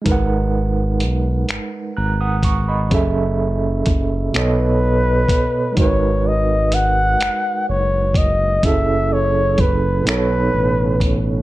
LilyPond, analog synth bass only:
\new Staff \with { instrumentName = "Analog synth bass" } { \clef bass \time 6/8 \key gis \minor \tempo 4. = 42 gis,,4 b,,8 gis,,8 gis,,4 | fis,,4 fis,,8 b,,4 r8 | gis,,4. fis,,8 fis,,4 | fis,,4. b,,8 a,,4 | }